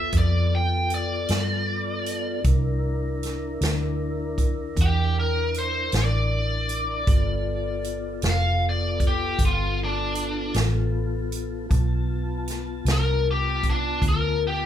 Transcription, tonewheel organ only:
Already playing: B3 F4 A4
2.46 D4 E4 A#4
7.07 B3 F4 A4
11.69 B3 F4 A5

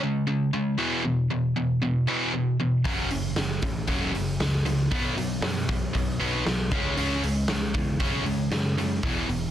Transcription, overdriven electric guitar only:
0.03 C#3 G#3
0.27 C#3 G#3
0.53 C#3 G#3
0.78 E2 B2 E3
1.04 E2 B2
1.30 E2 B2
1.56 E2 B2
1.82 E2 B2
2.07 E2 B2 E3
2.33 E2 B2
2.60 E2 B2
2.84 F#2 C#3 F#3
3.11 F#2 C#3
3.37 F#2 C#3
3.63 F#2 C#3
3.87 F#2 C#3 F#3
4.14 F#2 C#3
4.40 F#2 C#3
4.66 F#2 C#3
4.91 B2 F#3 B3
5.18 B2 F#3
5.43 B2 F#3
5.68 B2 F#3
5.93 B2 F#3
6.20 B2 F#3 B3
6.46 B2 F#3
6.72 C#3 G#3 C#4
6.97 C#3 G#3 C#4
7.23 C#3 G#3
7.49 C#3 G#3
7.74 C#3 G#3
8.00 C#3 G#3 C#4
8.25 C#3 G#3
8.52 C#3 G#3
8.78 C#3 G#3
9.04 E2 B2 E3
9.29 E2 B2

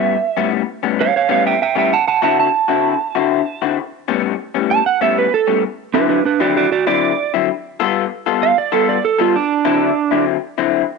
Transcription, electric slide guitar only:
Already playing: E5
1.01 C#5 F5
1.16 C#5 F5
1.31 C#5 F5
1.46 E5 G5
1.62 E5 G5
1.78 E5 G5
1.93 F#5 A5
2.08 F#5 A5
2.23 F#5 A5
2.40 A5
4.71 A5
4.86 F#5
5.02 E5
5.18 B4
5.34 A4
5.94 D4 B4
6.09 D4 B4
6.25 D4 B4
6.41 F#4 D5
6.57 F#4 D5
6.72 F#4 D5
6.87 D5
8.43 F5
8.58 D5
8.73 A4
8.89 D5
9.05 A4
9.21 F4
9.36 D4

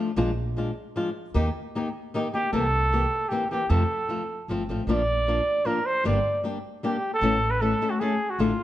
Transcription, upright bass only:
0.17 A#1
1.35 D#2
2.53 C2
3.70 F2
4.48 G1
4.69 A1
4.87 A#1
6.06 G1
7.21 A1
8.39 A1

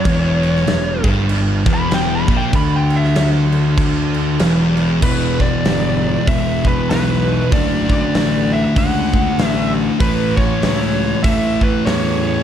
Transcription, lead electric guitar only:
Already playing: C#5
1.74 B5
1.94 G5
2.15 B5
2.37 G5
2.55 B5
2.76 G5
2.96 E5
5.03 B4
5.41 D5
6.28 E5
6.67 B4
6.90 B4
7.53 D5
8.53 E5
8.78 F#5
9.45 E5
10.00 B4
10.36 C#5
11.24 E5
11.63 B4
11.85 C#5

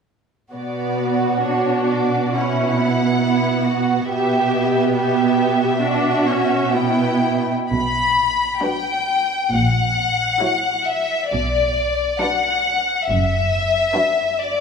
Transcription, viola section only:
0.54 B3
1.42 D4
2.32 C#4
2.78 B3
4.08 B3
5.82 D4
6.27 C#4
6.73 B3
8.61 F#3 D4
10.41 F#3 E4
12.19 F#3 D4
13.95 F#3 D4

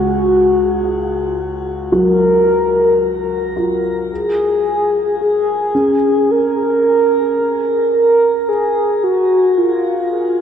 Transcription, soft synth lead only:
Already playing: F#4
1.92 A#4
4.10 G#4
5.21 G#4
6.31 A#4
7.93 A#4
8.48 G#4
9.03 F#4
9.57 F4

